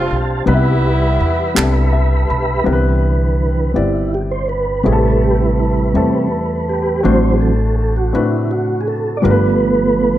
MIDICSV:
0, 0, Header, 1, 6, 480
1, 0, Start_track
1, 0, Key_signature, 0, "major"
1, 0, Tempo, 731083
1, 308, Time_signature, 6, 3, 24, 8
1, 6686, End_track
2, 0, Start_track
2, 0, Title_t, "Tonewheel organ"
2, 0, Program_c, 0, 16
2, 0, Note_on_c, 0, 67, 60
2, 0, Note_on_c, 0, 72, 55
2, 0, Note_on_c, 0, 77, 53
2, 0, Note_on_c, 0, 81, 69
2, 280, Note_off_c, 0, 77, 0
2, 293, Note_off_c, 0, 72, 0
2, 293, Note_off_c, 0, 81, 0
2, 311, Note_on_c, 0, 76, 59
2, 315, Note_on_c, 0, 83, 68
2, 316, Note_on_c, 0, 71, 54
2, 1721, Note_off_c, 0, 67, 0
2, 1735, Note_off_c, 0, 76, 0
2, 1737, Note_off_c, 0, 83, 0
2, 1738, Note_off_c, 0, 71, 0
2, 1740, Note_on_c, 0, 50, 44
2, 1744, Note_on_c, 0, 52, 43
2, 1752, Note_on_c, 0, 71, 51
2, 2438, Note_off_c, 0, 50, 0
2, 2440, Note_off_c, 0, 52, 0
2, 2444, Note_off_c, 0, 71, 0
2, 2473, Note_on_c, 0, 64, 75
2, 2718, Note_off_c, 0, 64, 0
2, 2722, Note_on_c, 0, 67, 82
2, 2773, Note_off_c, 0, 67, 0
2, 2832, Note_on_c, 0, 72, 80
2, 2942, Note_off_c, 0, 72, 0
2, 2949, Note_on_c, 0, 71, 84
2, 3174, Note_on_c, 0, 48, 48
2, 3179, Note_off_c, 0, 71, 0
2, 3179, Note_on_c, 0, 55, 47
2, 3187, Note_on_c, 0, 71, 51
2, 3189, Note_on_c, 0, 69, 84
2, 3436, Note_off_c, 0, 69, 0
2, 3441, Note_on_c, 0, 67, 78
2, 3557, Note_on_c, 0, 64, 67
2, 3558, Note_off_c, 0, 67, 0
2, 3666, Note_off_c, 0, 64, 0
2, 3674, Note_on_c, 0, 64, 64
2, 3895, Note_off_c, 0, 64, 0
2, 3900, Note_off_c, 0, 48, 0
2, 3903, Note_off_c, 0, 55, 0
2, 3908, Note_on_c, 0, 48, 44
2, 3911, Note_on_c, 0, 55, 40
2, 3912, Note_on_c, 0, 60, 48
2, 4124, Note_off_c, 0, 48, 0
2, 4126, Note_off_c, 0, 55, 0
2, 4127, Note_off_c, 0, 60, 0
2, 4394, Note_on_c, 0, 67, 77
2, 4602, Note_off_c, 0, 71, 0
2, 4615, Note_off_c, 0, 67, 0
2, 4622, Note_on_c, 0, 52, 46
2, 4627, Note_on_c, 0, 54, 45
2, 4629, Note_on_c, 0, 60, 54
2, 4635, Note_on_c, 0, 72, 95
2, 4817, Note_on_c, 0, 68, 67
2, 4833, Note_off_c, 0, 72, 0
2, 4866, Note_off_c, 0, 68, 0
2, 4872, Note_on_c, 0, 69, 84
2, 4944, Note_off_c, 0, 52, 0
2, 4947, Note_off_c, 0, 54, 0
2, 4948, Note_off_c, 0, 60, 0
2, 5094, Note_off_c, 0, 69, 0
2, 5111, Note_on_c, 0, 69, 83
2, 5228, Note_on_c, 0, 66, 78
2, 5234, Note_off_c, 0, 69, 0
2, 5340, Note_off_c, 0, 66, 0
2, 5353, Note_on_c, 0, 64, 75
2, 5588, Note_on_c, 0, 66, 83
2, 5598, Note_off_c, 0, 64, 0
2, 5782, Note_on_c, 0, 68, 61
2, 5789, Note_off_c, 0, 66, 0
2, 5829, Note_off_c, 0, 68, 0
2, 5829, Note_on_c, 0, 69, 79
2, 6020, Note_on_c, 0, 74, 63
2, 6030, Note_off_c, 0, 69, 0
2, 6057, Note_on_c, 0, 53, 50
2, 6063, Note_on_c, 0, 57, 48
2, 6064, Note_on_c, 0, 71, 82
2, 6066, Note_on_c, 0, 59, 58
2, 6068, Note_off_c, 0, 74, 0
2, 6686, Note_off_c, 0, 53, 0
2, 6686, Note_off_c, 0, 57, 0
2, 6686, Note_off_c, 0, 59, 0
2, 6686, Note_off_c, 0, 71, 0
2, 6686, End_track
3, 0, Start_track
3, 0, Title_t, "Grand piano"
3, 0, Program_c, 1, 0
3, 0, Control_c, 1, 64, 127
3, 0, Note_on_c, 1, 43, 61
3, 0, Note_on_c, 1, 55, 63
3, 0, Note_on_c, 1, 60, 58
3, 0, Note_on_c, 1, 62, 59
3, 0, Note_on_c, 1, 65, 59
3, 0, Note_on_c, 1, 69, 84
3, 0, Note_on_c, 1, 72, 70
3, 101, Note_off_c, 1, 55, 0
3, 102, Note_off_c, 1, 60, 0
3, 106, Note_off_c, 1, 62, 0
3, 107, Note_off_c, 1, 65, 0
3, 109, Note_off_c, 1, 72, 0
3, 300, Note_on_c, 1, 55, 77
3, 303, Note_on_c, 1, 59, 70
3, 305, Note_on_c, 1, 48, 62
3, 311, Note_on_c, 1, 63, 54
3, 314, Note_on_c, 1, 71, 82
3, 317, Control_c, 1, 64, 0
3, 320, Note_off_c, 1, 69, 0
3, 323, Note_off_c, 1, 43, 0
3, 352, Note_off_c, 1, 63, 0
3, 354, Note_on_c, 1, 64, 71
3, 411, Control_c, 1, 64, 127
3, 821, Note_off_c, 1, 55, 0
3, 822, Note_off_c, 1, 59, 0
3, 828, Note_off_c, 1, 71, 0
3, 848, Note_off_c, 1, 64, 0
3, 1000, Note_off_c, 1, 48, 0
3, 1016, Note_on_c, 1, 55, 74
3, 1020, Note_on_c, 1, 59, 68
3, 1023, Note_on_c, 1, 48, 70
3, 1026, Note_on_c, 1, 62, 54
3, 1030, Note_on_c, 1, 69, 86
3, 1069, Note_off_c, 1, 62, 0
3, 1071, Note_on_c, 1, 64, 67
3, 1264, Note_on_c, 1, 76, 65
3, 1489, Note_off_c, 1, 76, 0
3, 1509, Note_on_c, 1, 83, 65
3, 1539, Note_off_c, 1, 55, 0
3, 1541, Note_off_c, 1, 59, 0
3, 1542, Note_off_c, 1, 48, 0
3, 1546, Note_off_c, 1, 69, 0
3, 1566, Note_off_c, 1, 64, 0
3, 1732, Note_off_c, 1, 83, 0
3, 1733, Note_on_c, 1, 55, 76
3, 1736, Note_on_c, 1, 59, 68
3, 1738, Note_on_c, 1, 60, 69
3, 1741, Note_on_c, 1, 48, 63
3, 1745, Note_on_c, 1, 64, 70
3, 1748, Note_on_c, 1, 70, 68
3, 1758, Control_c, 1, 64, 0
3, 1790, Note_off_c, 1, 70, 0
3, 1790, Note_on_c, 1, 71, 88
3, 1867, Control_c, 1, 64, 127
3, 2257, Note_off_c, 1, 55, 0
3, 2259, Note_off_c, 1, 59, 0
3, 2260, Note_off_c, 1, 60, 0
3, 2264, Note_off_c, 1, 64, 0
3, 2286, Note_off_c, 1, 71, 0
3, 2439, Note_off_c, 1, 48, 0
3, 2454, Note_on_c, 1, 55, 61
3, 2455, Note_on_c, 1, 59, 53
3, 2458, Note_on_c, 1, 60, 53
3, 2466, Note_on_c, 1, 64, 52
3, 2468, Note_on_c, 1, 74, 65
3, 2978, Note_off_c, 1, 55, 0
3, 2979, Note_off_c, 1, 59, 0
3, 2980, Note_off_c, 1, 60, 0
3, 2984, Note_off_c, 1, 64, 0
3, 2985, Note_off_c, 1, 74, 0
3, 3174, Note_on_c, 1, 55, 70
3, 3179, Note_on_c, 1, 57, 63
3, 3184, Note_on_c, 1, 60, 64
3, 3185, Note_on_c, 1, 64, 63
3, 3186, Note_on_c, 1, 45, 57
3, 3191, Note_on_c, 1, 68, 60
3, 3196, Control_c, 1, 64, 0
3, 3232, Note_off_c, 1, 68, 0
3, 3233, Note_on_c, 1, 69, 75
3, 3313, Control_c, 1, 64, 127
3, 3699, Note_off_c, 1, 55, 0
3, 3701, Note_off_c, 1, 57, 0
3, 3703, Note_off_c, 1, 60, 0
3, 3704, Note_off_c, 1, 64, 0
3, 3728, Note_off_c, 1, 69, 0
3, 3881, Note_off_c, 1, 45, 0
3, 3900, Note_on_c, 1, 55, 58
3, 3902, Note_on_c, 1, 57, 56
3, 3908, Note_on_c, 1, 60, 54
3, 3910, Note_on_c, 1, 64, 57
3, 3917, Note_on_c, 1, 69, 71
3, 4421, Note_off_c, 1, 55, 0
3, 4423, Note_off_c, 1, 57, 0
3, 4425, Note_off_c, 1, 60, 0
3, 4426, Note_off_c, 1, 64, 0
3, 4430, Note_off_c, 1, 69, 0
3, 4617, Note_on_c, 1, 57, 73
3, 4623, Note_on_c, 1, 60, 63
3, 4623, Note_on_c, 1, 62, 67
3, 4628, Note_on_c, 1, 45, 57
3, 4630, Note_on_c, 1, 66, 66
3, 4633, Note_on_c, 1, 72, 78
3, 4639, Control_c, 1, 64, 0
3, 4756, Control_c, 1, 64, 127
3, 5140, Note_off_c, 1, 57, 0
3, 5143, Note_off_c, 1, 60, 0
3, 5143, Note_off_c, 1, 62, 0
3, 5147, Note_off_c, 1, 66, 0
3, 5148, Note_off_c, 1, 72, 0
3, 5322, Note_off_c, 1, 45, 0
3, 5336, Note_on_c, 1, 57, 63
3, 5340, Note_on_c, 1, 60, 60
3, 5340, Note_on_c, 1, 62, 59
3, 5347, Note_on_c, 1, 66, 57
3, 5349, Note_on_c, 1, 71, 72
3, 5860, Note_off_c, 1, 57, 0
3, 5862, Note_off_c, 1, 60, 0
3, 5862, Note_off_c, 1, 62, 0
3, 5865, Note_off_c, 1, 66, 0
3, 5867, Note_off_c, 1, 71, 0
3, 6052, Note_on_c, 1, 55, 70
3, 6059, Note_on_c, 1, 59, 64
3, 6060, Note_on_c, 1, 43, 55
3, 6061, Note_on_c, 1, 62, 65
3, 6065, Note_on_c, 1, 65, 62
3, 6067, Note_on_c, 1, 70, 63
3, 6077, Control_c, 1, 64, 0
3, 6109, Note_on_c, 1, 71, 78
3, 6110, Note_off_c, 1, 70, 0
3, 6184, Control_c, 1, 64, 127
3, 6578, Note_off_c, 1, 55, 0
3, 6581, Note_off_c, 1, 59, 0
3, 6582, Note_off_c, 1, 62, 0
3, 6584, Note_off_c, 1, 65, 0
3, 6607, Note_off_c, 1, 71, 0
3, 6686, Note_off_c, 1, 43, 0
3, 6686, End_track
4, 0, Start_track
4, 0, Title_t, "Horn section"
4, 0, Program_c, 2, 61
4, 0, Note_on_c, 2, 57, 60
4, 0, Note_on_c, 2, 60, 64
4, 0, Note_on_c, 2, 65, 83
4, 209, Note_off_c, 2, 57, 0
4, 209, Note_off_c, 2, 60, 0
4, 209, Note_off_c, 2, 65, 0
4, 321, Note_on_c, 2, 64, 80
4, 323, Note_on_c, 2, 59, 60
4, 326, Note_on_c, 2, 55, 60
4, 1248, Note_off_c, 2, 64, 0
4, 1249, Note_off_c, 2, 59, 0
4, 1251, Note_off_c, 2, 55, 0
4, 6686, End_track
5, 0, Start_track
5, 0, Title_t, "Upright bass"
5, 0, Program_c, 3, 32
5, 70, Note_on_c, 3, 35, 74
5, 290, Note_off_c, 3, 35, 0
5, 308, Note_on_c, 3, 36, 97
5, 762, Note_off_c, 3, 36, 0
5, 789, Note_on_c, 3, 40, 82
5, 1010, Note_off_c, 3, 40, 0
5, 1030, Note_on_c, 3, 36, 100
5, 1483, Note_off_c, 3, 36, 0
5, 1511, Note_on_c, 3, 35, 77
5, 1730, Note_off_c, 3, 35, 0
5, 1749, Note_on_c, 3, 36, 80
5, 2442, Note_off_c, 3, 36, 0
5, 2470, Note_on_c, 3, 31, 82
5, 3163, Note_off_c, 3, 31, 0
5, 3190, Note_on_c, 3, 33, 85
5, 3883, Note_off_c, 3, 33, 0
5, 3907, Note_on_c, 3, 40, 83
5, 4602, Note_off_c, 3, 40, 0
5, 4628, Note_on_c, 3, 33, 90
5, 5323, Note_off_c, 3, 33, 0
5, 5349, Note_on_c, 3, 45, 91
5, 6043, Note_off_c, 3, 45, 0
5, 6072, Note_on_c, 3, 31, 96
5, 6686, Note_off_c, 3, 31, 0
5, 6686, End_track
6, 0, Start_track
6, 0, Title_t, "Drums"
6, 1031, Note_on_c, 9, 39, 96
6, 1096, Note_off_c, 9, 39, 0
6, 6686, End_track
0, 0, End_of_file